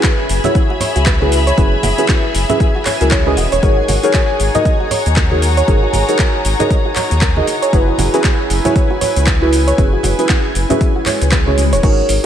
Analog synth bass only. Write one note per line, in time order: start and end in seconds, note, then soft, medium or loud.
0.29 0.39 F#1 medium
0.96 1.52 C#2 medium
1.58 1.76 F#1 loud
1.83 1.93 F#1 medium
2.35 2.45 F#1 medium
3.01 3.37 C#2 loud
3.37 3.47 E1 medium
3.52 3.59 E1 medium
3.63 3.81 G#1 loud
3.89 3.98 G#1 medium
4.40 4.50 G#1 medium
5.06 5.62 D#2 loud
5.68 5.86 G#1 medium
5.94 6.03 G#1 medium
6.45 6.55 G#1 medium
7.11 7.42 D#2 medium
7.73 7.91 F#1 medium
7.99 8.09 F#1 medium
8.50 8.60 F#1 medium
9.16 9.72 C#2 loud
9.78 9.97 F#1 medium
10.04 10.14 F#1 medium
10.55 10.65 F#1 medium
11.22 11.57 C#2 medium
11.58 11.74 C#2 medium
11.73 11.80 E1 loud
11.83 12.02 G#1 loud
12.09 12.19 G#1 medium